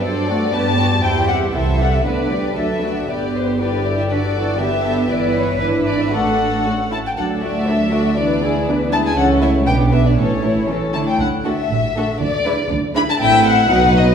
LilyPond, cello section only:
\new Staff \with { instrumentName = "Cello section" } { \time 2/4 \key g \major \tempo 4 = 119 a'4 g'8 fis'8 | g'4 a'4 | b'4. r8 | r4 g'4 |
b'8 a'8 g'8 a'8 | \key d \major b'2 | a'4. r8 | d,2~ |
d,2 | cis,4 b,4 | a,4 e8 d8 | d4 a,4 |
d4 d4 | \key a \dorian a,4 b,4 | }